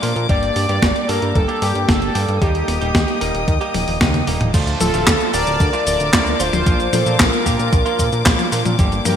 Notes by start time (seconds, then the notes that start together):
Already playing: A#3 D5 F5 D6
0.02 A#2 F3 A#3 D4 F4, open hi-hat
0.16 A#2, closed hi-hat
0.29 G1 G3 A#3 D4 G4 D5 G5, kick, closed hi-hat
0.43 closed hi-hat
0.56 G2, open hi-hat
0.69 G2 G3 A#3 D4 G4, closed hi-hat
0.82 G1, kick, snare, closed hi-hat
0.96 closed hi-hat
1.09 G2 G3 A#3 D4 A4 A#4, open hi-hat
1.22 G2, closed hi-hat
1.35 G1 A4, kick, closed hi-hat
1.48 G3 A#3 D4 G4, closed hi-hat
1.62 G2 G4, open hi-hat
1.75 G2, closed hi-hat
1.88 G1 G3 A#3 D4 G4 A4, kick, snare, closed hi-hat
2.02 closed hi-hat
2.15 G2 G3 A#3 D4 G4, open hi-hat
2.28 G2, closed hi-hat
2.41 D#2 G3 A#3 D#4 G4 D#5 D#6, kick, closed hi-hat
2.55 closed hi-hat
2.68 D#1, snare, open hi-hat
2.81 D#1 G3 A#3 D#4 G4, closed hi-hat
2.95 D#2, kick, snare, closed hi-hat
3.08 closed hi-hat
3.21 D#1 G3 A#3 D#4 A#4, open hi-hat
3.35 D#1, closed hi-hat
3.48 D#2, kick, closed hi-hat
3.61 G3 A#3 D#4 G4, closed hi-hat
3.74 D#1, open hi-hat, high tom
3.88 D#1, open hi-hat
4.01 D#2 G3 A#3 D#4 G4, kick, snare, closed hi-hat, mid tom
4.14 closed hi-hat, mid tom
4.27 D#1 G3 A#3 D#4 G4, open hi-hat
4.41 D#1, closed hi-hat, mid tom
4.54 D2 F3 A3 D4 F4 D5 F5 A5 D6, kick, closed hi-hat, crash, cabasa
4.67 closed hi-hat, cabasa
4.81 D1 F4 A4, open hi-hat, high tom, cabasa
4.93 D1 F3 A3 D4 F4, closed hi-hat, cabasa
5.07 D2, kick, snare, clap, closed hi-hat, cabasa
5.20 closed hi-hat, cabasa
5.33 D1 F3 D4 G4 A#4 D5, open hi-hat, cabasa
5.47 D1, closed hi-hat, cabasa
5.60 D2, kick, closed hi-hat, cabasa
5.73 F3 A3 D4 F4, closed hi-hat, cabasa
5.86 D1 A#4 D5, open hi-hat, cabasa
6.00 D1, closed hi-hat, cabasa
6.13 D2 F3 A3 D4 F4, kick, snare, clap, closed hi-hat, cabasa
6.27 closed hi-hat, cabasa
6.40 D1 F3 A3 D4 F4 C5, open hi-hat, cabasa
6.53 D1, closed hi-hat, high tom, cabasa
6.66 A#1 F3 A#3 D4 F4, kick, closed hi-hat, cabasa
6.80 closed hi-hat, cabasa
6.93 A#2 A4 C5, snare, open hi-hat, high tom, cabasa
7.06 A#2 F3 A#3 D4 F4, closed hi-hat, cabasa
7.19 A#1 F4 A#4, kick, snare, clap, closed hi-hat, cabasa
7.33 closed hi-hat, cabasa
7.46 A#2 F3 A#3 D4 G4, kick, open hi-hat, cabasa
7.59 A#2, closed hi-hat, cabasa
7.73 A#1, kick, closed hi-hat, cabasa
7.86 F3 A#3 D4 F4, closed hi-hat, cabasa
7.99 A#2, kick, open hi-hat, cabasa
8.13 A#2, closed hi-hat, cabasa
8.25 A#1 F3 A#3 D4 F4, kick, snare, clap, closed hi-hat, cabasa
8.39 closed hi-hat, high tom, cabasa
8.52 A#2 F3 A#3 D4 F4, open hi-hat, cabasa
8.66 A#2, closed hi-hat, high tom, cabasa
8.79 G1 G3 A#3 D4 G4 D5 G5, kick, closed hi-hat, cabasa
8.92 closed hi-hat, cabasa
9.05 G2 G4 A#4, open hi-hat, high tom, cabasa